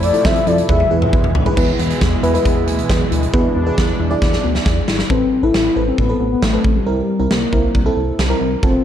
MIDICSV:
0, 0, Header, 1, 7, 480
1, 0, Start_track
1, 0, Tempo, 441176
1, 1709, Time_signature, 4, 2, 24, 8
1, 9620, End_track
2, 0, Start_track
2, 0, Title_t, "FM electric piano"
2, 0, Program_c, 0, 5
2, 149, Note_on_c, 0, 64, 73
2, 150, Note_on_c, 0, 65, 68
2, 150, Note_on_c, 0, 69, 79
2, 420, Note_off_c, 0, 64, 0
2, 420, Note_off_c, 0, 65, 0
2, 420, Note_off_c, 0, 69, 0
2, 509, Note_on_c, 0, 65, 72
2, 510, Note_on_c, 0, 64, 74
2, 510, Note_on_c, 0, 69, 83
2, 737, Note_off_c, 0, 64, 0
2, 749, Note_off_c, 0, 65, 0
2, 749, Note_off_c, 0, 69, 0
2, 750, Note_on_c, 0, 64, 75
2, 750, Note_on_c, 0, 68, 72
2, 750, Note_on_c, 0, 71, 88
2, 941, Note_off_c, 0, 64, 0
2, 941, Note_off_c, 0, 68, 0
2, 941, Note_off_c, 0, 71, 0
2, 989, Note_on_c, 0, 64, 75
2, 989, Note_on_c, 0, 68, 68
2, 990, Note_on_c, 0, 71, 82
2, 1440, Note_off_c, 0, 64, 0
2, 1440, Note_off_c, 0, 68, 0
2, 1440, Note_off_c, 0, 71, 0
2, 1589, Note_on_c, 0, 64, 89
2, 1589, Note_on_c, 0, 68, 83
2, 1590, Note_on_c, 0, 71, 98
2, 1679, Note_off_c, 0, 64, 0
2, 1679, Note_off_c, 0, 68, 0
2, 1680, Note_off_c, 0, 71, 0
2, 1709, Note_on_c, 0, 64, 88
2, 1709, Note_on_c, 0, 68, 78
2, 1709, Note_on_c, 0, 71, 95
2, 2250, Note_off_c, 0, 64, 0
2, 2250, Note_off_c, 0, 68, 0
2, 2250, Note_off_c, 0, 71, 0
2, 2429, Note_on_c, 0, 64, 86
2, 2429, Note_on_c, 0, 68, 83
2, 2429, Note_on_c, 0, 71, 100
2, 2519, Note_off_c, 0, 64, 0
2, 2519, Note_off_c, 0, 68, 0
2, 2519, Note_off_c, 0, 71, 0
2, 2548, Note_on_c, 0, 64, 90
2, 2548, Note_on_c, 0, 68, 82
2, 2548, Note_on_c, 0, 71, 99
2, 3270, Note_off_c, 0, 64, 0
2, 3270, Note_off_c, 0, 68, 0
2, 3270, Note_off_c, 0, 71, 0
2, 3628, Note_on_c, 0, 64, 85
2, 3628, Note_on_c, 0, 68, 80
2, 3628, Note_on_c, 0, 71, 94
2, 3899, Note_off_c, 0, 64, 0
2, 3899, Note_off_c, 0, 68, 0
2, 3899, Note_off_c, 0, 71, 0
2, 3987, Note_on_c, 0, 64, 84
2, 3988, Note_on_c, 0, 68, 76
2, 3989, Note_on_c, 0, 71, 93
2, 4349, Note_off_c, 0, 64, 0
2, 4349, Note_off_c, 0, 68, 0
2, 4350, Note_off_c, 0, 71, 0
2, 4468, Note_on_c, 0, 64, 90
2, 4468, Note_on_c, 0, 68, 81
2, 4468, Note_on_c, 0, 74, 94
2, 5190, Note_off_c, 0, 64, 0
2, 5190, Note_off_c, 0, 68, 0
2, 5190, Note_off_c, 0, 74, 0
2, 5547, Note_on_c, 0, 71, 75
2, 5548, Note_on_c, 0, 60, 70
2, 5548, Note_on_c, 0, 69, 64
2, 5819, Note_off_c, 0, 60, 0
2, 5819, Note_off_c, 0, 69, 0
2, 5819, Note_off_c, 0, 71, 0
2, 5908, Note_on_c, 0, 69, 63
2, 5908, Note_on_c, 0, 71, 75
2, 5909, Note_on_c, 0, 60, 67
2, 6179, Note_off_c, 0, 69, 0
2, 6179, Note_off_c, 0, 71, 0
2, 6180, Note_off_c, 0, 60, 0
2, 6268, Note_on_c, 0, 60, 73
2, 6268, Note_on_c, 0, 69, 67
2, 6268, Note_on_c, 0, 71, 78
2, 6539, Note_off_c, 0, 60, 0
2, 6539, Note_off_c, 0, 69, 0
2, 6539, Note_off_c, 0, 71, 0
2, 6627, Note_on_c, 0, 71, 80
2, 6628, Note_on_c, 0, 60, 71
2, 6628, Note_on_c, 0, 69, 66
2, 6989, Note_off_c, 0, 60, 0
2, 6989, Note_off_c, 0, 69, 0
2, 6989, Note_off_c, 0, 71, 0
2, 7108, Note_on_c, 0, 60, 75
2, 7108, Note_on_c, 0, 69, 69
2, 7108, Note_on_c, 0, 71, 81
2, 7379, Note_off_c, 0, 60, 0
2, 7379, Note_off_c, 0, 69, 0
2, 7379, Note_off_c, 0, 71, 0
2, 7468, Note_on_c, 0, 60, 73
2, 7468, Note_on_c, 0, 64, 64
2, 7468, Note_on_c, 0, 70, 81
2, 7739, Note_off_c, 0, 60, 0
2, 7739, Note_off_c, 0, 64, 0
2, 7739, Note_off_c, 0, 70, 0
2, 7828, Note_on_c, 0, 60, 71
2, 7828, Note_on_c, 0, 64, 63
2, 7828, Note_on_c, 0, 70, 75
2, 8099, Note_off_c, 0, 60, 0
2, 8099, Note_off_c, 0, 64, 0
2, 8099, Note_off_c, 0, 70, 0
2, 8188, Note_on_c, 0, 60, 75
2, 8188, Note_on_c, 0, 64, 68
2, 8188, Note_on_c, 0, 70, 81
2, 8459, Note_off_c, 0, 60, 0
2, 8459, Note_off_c, 0, 64, 0
2, 8459, Note_off_c, 0, 70, 0
2, 8549, Note_on_c, 0, 60, 88
2, 8549, Note_on_c, 0, 64, 80
2, 8549, Note_on_c, 0, 69, 93
2, 8910, Note_off_c, 0, 60, 0
2, 8910, Note_off_c, 0, 64, 0
2, 8910, Note_off_c, 0, 69, 0
2, 9029, Note_on_c, 0, 64, 79
2, 9029, Note_on_c, 0, 70, 95
2, 9030, Note_on_c, 0, 60, 85
2, 9300, Note_off_c, 0, 60, 0
2, 9300, Note_off_c, 0, 64, 0
2, 9300, Note_off_c, 0, 70, 0
2, 9388, Note_on_c, 0, 60, 69
2, 9389, Note_on_c, 0, 65, 64
2, 9389, Note_on_c, 0, 69, 79
2, 9620, Note_off_c, 0, 60, 0
2, 9620, Note_off_c, 0, 65, 0
2, 9620, Note_off_c, 0, 69, 0
2, 9620, End_track
3, 0, Start_track
3, 0, Title_t, "Soft synth lead"
3, 0, Program_c, 1, 80
3, 31, Note_on_c, 1, 74, 97
3, 253, Note_off_c, 1, 74, 0
3, 271, Note_on_c, 1, 76, 107
3, 493, Note_off_c, 1, 76, 0
3, 513, Note_on_c, 1, 74, 98
3, 734, Note_off_c, 1, 74, 0
3, 753, Note_on_c, 1, 76, 98
3, 1427, Note_off_c, 1, 76, 0
3, 5547, Note_on_c, 1, 60, 100
3, 5907, Note_on_c, 1, 64, 97
3, 5923, Note_off_c, 1, 60, 0
3, 6022, Note_off_c, 1, 64, 0
3, 6028, Note_on_c, 1, 64, 109
3, 6363, Note_off_c, 1, 64, 0
3, 6388, Note_on_c, 1, 60, 97
3, 6500, Note_off_c, 1, 60, 0
3, 6511, Note_on_c, 1, 59, 103
3, 6845, Note_off_c, 1, 59, 0
3, 6870, Note_on_c, 1, 59, 89
3, 6990, Note_on_c, 1, 57, 93
3, 7006, Note_off_c, 1, 59, 0
3, 7350, Note_on_c, 1, 55, 83
3, 7367, Note_off_c, 1, 57, 0
3, 7464, Note_off_c, 1, 55, 0
3, 7470, Note_on_c, 1, 55, 87
3, 7916, Note_off_c, 1, 55, 0
3, 7950, Note_on_c, 1, 58, 90
3, 8866, Note_off_c, 1, 58, 0
3, 9389, Note_on_c, 1, 60, 100
3, 9620, Note_off_c, 1, 60, 0
3, 9620, End_track
4, 0, Start_track
4, 0, Title_t, "Synth pluck"
4, 0, Program_c, 2, 84
4, 1710, Note_on_c, 2, 59, 90
4, 1861, Note_off_c, 2, 59, 0
4, 1949, Note_on_c, 2, 59, 77
4, 2101, Note_off_c, 2, 59, 0
4, 2188, Note_on_c, 2, 59, 82
4, 2340, Note_off_c, 2, 59, 0
4, 2428, Note_on_c, 2, 64, 77
4, 2580, Note_off_c, 2, 64, 0
4, 2669, Note_on_c, 2, 59, 91
4, 2820, Note_off_c, 2, 59, 0
4, 2908, Note_on_c, 2, 59, 77
4, 3060, Note_off_c, 2, 59, 0
4, 3148, Note_on_c, 2, 68, 86
4, 3300, Note_off_c, 2, 68, 0
4, 3387, Note_on_c, 2, 64, 77
4, 3539, Note_off_c, 2, 64, 0
4, 3629, Note_on_c, 2, 59, 91
4, 3781, Note_off_c, 2, 59, 0
4, 3867, Note_on_c, 2, 59, 77
4, 4019, Note_off_c, 2, 59, 0
4, 4107, Note_on_c, 2, 59, 84
4, 4259, Note_off_c, 2, 59, 0
4, 4348, Note_on_c, 2, 64, 79
4, 4500, Note_off_c, 2, 64, 0
4, 4589, Note_on_c, 2, 59, 85
4, 4740, Note_off_c, 2, 59, 0
4, 4828, Note_on_c, 2, 59, 76
4, 4980, Note_off_c, 2, 59, 0
4, 5069, Note_on_c, 2, 68, 85
4, 5220, Note_off_c, 2, 68, 0
4, 5307, Note_on_c, 2, 64, 81
4, 5459, Note_off_c, 2, 64, 0
4, 9620, End_track
5, 0, Start_track
5, 0, Title_t, "Analog synth pad"
5, 0, Program_c, 3, 89
5, 0, Note_on_c, 3, 48, 79
5, 0, Note_on_c, 3, 53, 72
5, 0, Note_on_c, 3, 57, 73
5, 0, Note_on_c, 3, 64, 95
5, 741, Note_off_c, 3, 48, 0
5, 741, Note_off_c, 3, 53, 0
5, 741, Note_off_c, 3, 57, 0
5, 749, Note_on_c, 3, 52, 69
5, 750, Note_on_c, 3, 47, 79
5, 750, Note_on_c, 3, 56, 69
5, 1671, Note_off_c, 3, 64, 0
5, 1696, Note_off_c, 3, 52, 0
5, 1697, Note_off_c, 3, 47, 0
5, 1697, Note_off_c, 3, 56, 0
5, 1709, Note_on_c, 3, 52, 77
5, 1709, Note_on_c, 3, 64, 91
5, 1710, Note_on_c, 3, 56, 79
5, 1711, Note_on_c, 3, 47, 86
5, 3610, Note_off_c, 3, 64, 0
5, 3631, Note_on_c, 3, 62, 92
5, 5511, Note_off_c, 3, 47, 0
5, 5511, Note_off_c, 3, 52, 0
5, 5511, Note_off_c, 3, 56, 0
5, 5531, Note_off_c, 3, 62, 0
5, 9620, End_track
6, 0, Start_track
6, 0, Title_t, "Analog synth bass"
6, 0, Program_c, 4, 38
6, 0, Note_on_c, 4, 41, 102
6, 125, Note_off_c, 4, 41, 0
6, 270, Note_on_c, 4, 41, 114
6, 438, Note_off_c, 4, 41, 0
6, 509, Note_on_c, 4, 41, 99
6, 677, Note_off_c, 4, 41, 0
6, 750, Note_on_c, 4, 40, 109
6, 918, Note_off_c, 4, 40, 0
6, 988, Note_on_c, 4, 40, 101
6, 1157, Note_off_c, 4, 40, 0
6, 1230, Note_on_c, 4, 40, 105
6, 1398, Note_off_c, 4, 40, 0
6, 1468, Note_on_c, 4, 38, 104
6, 1637, Note_off_c, 4, 38, 0
6, 1709, Note_on_c, 4, 40, 107
6, 1877, Note_off_c, 4, 40, 0
6, 1947, Note_on_c, 4, 40, 99
6, 2116, Note_off_c, 4, 40, 0
6, 2191, Note_on_c, 4, 40, 105
6, 2358, Note_off_c, 4, 40, 0
6, 2428, Note_on_c, 4, 40, 93
6, 2596, Note_off_c, 4, 40, 0
6, 2671, Note_on_c, 4, 40, 100
6, 2909, Note_on_c, 4, 38, 87
6, 2926, Note_off_c, 4, 40, 0
6, 3077, Note_off_c, 4, 38, 0
6, 3150, Note_on_c, 4, 40, 101
6, 3318, Note_off_c, 4, 40, 0
6, 3390, Note_on_c, 4, 38, 93
6, 3558, Note_off_c, 4, 38, 0
6, 3630, Note_on_c, 4, 40, 108
6, 3798, Note_off_c, 4, 40, 0
6, 3870, Note_on_c, 4, 40, 104
6, 4038, Note_off_c, 4, 40, 0
6, 4111, Note_on_c, 4, 40, 103
6, 4278, Note_off_c, 4, 40, 0
6, 4349, Note_on_c, 4, 40, 95
6, 4517, Note_off_c, 4, 40, 0
6, 4591, Note_on_c, 4, 40, 104
6, 4758, Note_off_c, 4, 40, 0
6, 4829, Note_on_c, 4, 38, 86
6, 4997, Note_off_c, 4, 38, 0
6, 5068, Note_on_c, 4, 40, 105
6, 5237, Note_off_c, 4, 40, 0
6, 5309, Note_on_c, 4, 32, 98
6, 5477, Note_off_c, 4, 32, 0
6, 5548, Note_on_c, 4, 33, 106
6, 5716, Note_off_c, 4, 33, 0
6, 5907, Note_on_c, 4, 33, 102
6, 5992, Note_off_c, 4, 33, 0
6, 6028, Note_on_c, 4, 33, 100
6, 6196, Note_off_c, 4, 33, 0
6, 6268, Note_on_c, 4, 33, 88
6, 6436, Note_off_c, 4, 33, 0
6, 6509, Note_on_c, 4, 33, 110
6, 6677, Note_off_c, 4, 33, 0
6, 6746, Note_on_c, 4, 33, 96
6, 6915, Note_off_c, 4, 33, 0
6, 6986, Note_on_c, 4, 33, 107
6, 7155, Note_off_c, 4, 33, 0
6, 7229, Note_on_c, 4, 33, 98
6, 7397, Note_off_c, 4, 33, 0
6, 7468, Note_on_c, 4, 36, 104
6, 7636, Note_off_c, 4, 36, 0
6, 7828, Note_on_c, 4, 36, 92
6, 7913, Note_off_c, 4, 36, 0
6, 7948, Note_on_c, 4, 36, 100
6, 8116, Note_off_c, 4, 36, 0
6, 8189, Note_on_c, 4, 36, 87
6, 8357, Note_off_c, 4, 36, 0
6, 8430, Note_on_c, 4, 36, 102
6, 8597, Note_off_c, 4, 36, 0
6, 8668, Note_on_c, 4, 36, 93
6, 8837, Note_off_c, 4, 36, 0
6, 8908, Note_on_c, 4, 36, 106
6, 9076, Note_off_c, 4, 36, 0
6, 9149, Note_on_c, 4, 36, 103
6, 9317, Note_off_c, 4, 36, 0
6, 9388, Note_on_c, 4, 29, 101
6, 9556, Note_off_c, 4, 29, 0
6, 9620, End_track
7, 0, Start_track
7, 0, Title_t, "Drums"
7, 29, Note_on_c, 9, 42, 78
7, 137, Note_off_c, 9, 42, 0
7, 150, Note_on_c, 9, 42, 54
7, 259, Note_off_c, 9, 42, 0
7, 270, Note_on_c, 9, 36, 117
7, 270, Note_on_c, 9, 38, 107
7, 379, Note_off_c, 9, 36, 0
7, 379, Note_off_c, 9, 38, 0
7, 387, Note_on_c, 9, 42, 53
7, 496, Note_off_c, 9, 42, 0
7, 509, Note_on_c, 9, 42, 65
7, 618, Note_off_c, 9, 42, 0
7, 631, Note_on_c, 9, 42, 64
7, 740, Note_off_c, 9, 42, 0
7, 750, Note_on_c, 9, 48, 61
7, 751, Note_on_c, 9, 36, 109
7, 859, Note_off_c, 9, 36, 0
7, 859, Note_off_c, 9, 48, 0
7, 870, Note_on_c, 9, 48, 59
7, 979, Note_off_c, 9, 48, 0
7, 1110, Note_on_c, 9, 47, 72
7, 1219, Note_off_c, 9, 47, 0
7, 1229, Note_on_c, 9, 36, 110
7, 1338, Note_off_c, 9, 36, 0
7, 1349, Note_on_c, 9, 45, 85
7, 1458, Note_off_c, 9, 45, 0
7, 1468, Note_on_c, 9, 43, 103
7, 1577, Note_off_c, 9, 43, 0
7, 1589, Note_on_c, 9, 43, 94
7, 1698, Note_off_c, 9, 43, 0
7, 1709, Note_on_c, 9, 36, 110
7, 1709, Note_on_c, 9, 49, 91
7, 1818, Note_off_c, 9, 36, 0
7, 1818, Note_off_c, 9, 49, 0
7, 1950, Note_on_c, 9, 42, 73
7, 2058, Note_off_c, 9, 42, 0
7, 2072, Note_on_c, 9, 42, 52
7, 2180, Note_off_c, 9, 42, 0
7, 2188, Note_on_c, 9, 42, 75
7, 2191, Note_on_c, 9, 36, 111
7, 2192, Note_on_c, 9, 38, 106
7, 2297, Note_off_c, 9, 42, 0
7, 2300, Note_off_c, 9, 36, 0
7, 2301, Note_off_c, 9, 38, 0
7, 2431, Note_on_c, 9, 42, 62
7, 2539, Note_off_c, 9, 42, 0
7, 2553, Note_on_c, 9, 42, 62
7, 2662, Note_off_c, 9, 42, 0
7, 2671, Note_on_c, 9, 36, 107
7, 2673, Note_on_c, 9, 42, 73
7, 2780, Note_off_c, 9, 36, 0
7, 2782, Note_off_c, 9, 42, 0
7, 2910, Note_on_c, 9, 42, 76
7, 3019, Note_off_c, 9, 42, 0
7, 3031, Note_on_c, 9, 42, 53
7, 3140, Note_off_c, 9, 42, 0
7, 3150, Note_on_c, 9, 36, 104
7, 3151, Note_on_c, 9, 42, 81
7, 3153, Note_on_c, 9, 38, 105
7, 3259, Note_off_c, 9, 36, 0
7, 3259, Note_off_c, 9, 42, 0
7, 3262, Note_off_c, 9, 38, 0
7, 3392, Note_on_c, 9, 42, 81
7, 3501, Note_off_c, 9, 42, 0
7, 3511, Note_on_c, 9, 42, 53
7, 3620, Note_off_c, 9, 42, 0
7, 3630, Note_on_c, 9, 36, 107
7, 3739, Note_off_c, 9, 36, 0
7, 4111, Note_on_c, 9, 36, 107
7, 4113, Note_on_c, 9, 38, 101
7, 4220, Note_off_c, 9, 36, 0
7, 4222, Note_off_c, 9, 38, 0
7, 4590, Note_on_c, 9, 36, 105
7, 4590, Note_on_c, 9, 38, 54
7, 4698, Note_off_c, 9, 38, 0
7, 4699, Note_off_c, 9, 36, 0
7, 4710, Note_on_c, 9, 38, 52
7, 4818, Note_off_c, 9, 38, 0
7, 4950, Note_on_c, 9, 38, 64
7, 5059, Note_off_c, 9, 38, 0
7, 5069, Note_on_c, 9, 36, 105
7, 5069, Note_on_c, 9, 38, 82
7, 5178, Note_off_c, 9, 36, 0
7, 5178, Note_off_c, 9, 38, 0
7, 5308, Note_on_c, 9, 38, 96
7, 5417, Note_off_c, 9, 38, 0
7, 5428, Note_on_c, 9, 38, 84
7, 5537, Note_off_c, 9, 38, 0
7, 5548, Note_on_c, 9, 36, 109
7, 5657, Note_off_c, 9, 36, 0
7, 6031, Note_on_c, 9, 38, 101
7, 6140, Note_off_c, 9, 38, 0
7, 6509, Note_on_c, 9, 36, 87
7, 6618, Note_off_c, 9, 36, 0
7, 6990, Note_on_c, 9, 38, 105
7, 7099, Note_off_c, 9, 38, 0
7, 7230, Note_on_c, 9, 36, 92
7, 7338, Note_off_c, 9, 36, 0
7, 7951, Note_on_c, 9, 38, 104
7, 8060, Note_off_c, 9, 38, 0
7, 8189, Note_on_c, 9, 36, 81
7, 8298, Note_off_c, 9, 36, 0
7, 8430, Note_on_c, 9, 36, 86
7, 8539, Note_off_c, 9, 36, 0
7, 8911, Note_on_c, 9, 38, 101
7, 9020, Note_off_c, 9, 38, 0
7, 9389, Note_on_c, 9, 36, 108
7, 9497, Note_off_c, 9, 36, 0
7, 9620, End_track
0, 0, End_of_file